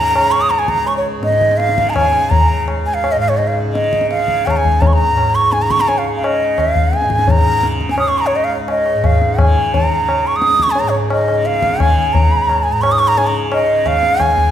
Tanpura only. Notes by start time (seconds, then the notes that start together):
Already playing: C#2 G#2 C#3
0.21 C#3
0.71 C#2
1.19 G#2
1.69 C#3
2.19 C#3
2.68 C#2
3.16 G#2
3.66 C#3
4.14 C#3
4.62 C#2
5.11 G#2
5.58 C#3
6.08 C#3
6.57 C#2
7.04 G#2
7.52 C#3
8.01 C#3
8.47 C#2
8.95 G#2
9.41 C#3
9.89 C#3
10.36 C#2
10.83 G#2
11.29 C#3
11.77 C#3
12.23 C#2
12.70 G#2
13.17 C#3
13.63 C#3
14.09 C#2